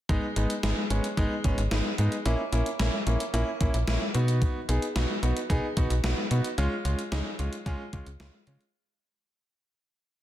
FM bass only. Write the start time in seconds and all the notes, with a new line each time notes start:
0.09 G#1
0.36 G#1
0.63 G#1
0.90 G#1
1.17 G#1
1.45 G#1
1.58 G#1
1.71 G#1
1.98 G#2
2.26 A#1
2.52 A#1
2.80 A#1
3.07 A#1
3.34 A#1
3.61 A#1
3.74 A#1
3.88 A#1
4.15 B2
4.69 B1
4.96 B1
5.23 B1
5.50 B1
5.77 B1
5.90 B1
6.04 B1
6.31 B2
6.58 C#2
6.85 C#2
7.12 C#2
7.39 C#2
7.66 C#2
7.93 C#2
8.07 C#2
8.20 C#2
8.47 C#3